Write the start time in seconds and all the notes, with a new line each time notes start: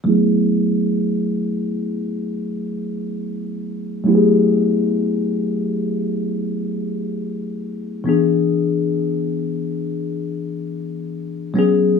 0.04 F#3 A3 B3 E4
0.09 G#4
4.04 F#3 A3 B3 E4
4.09 G4
4.15 G#4
8.04 E3 B3 D4
8.09 G#4
11.54 F#3 B3 C#4
11.59 G#4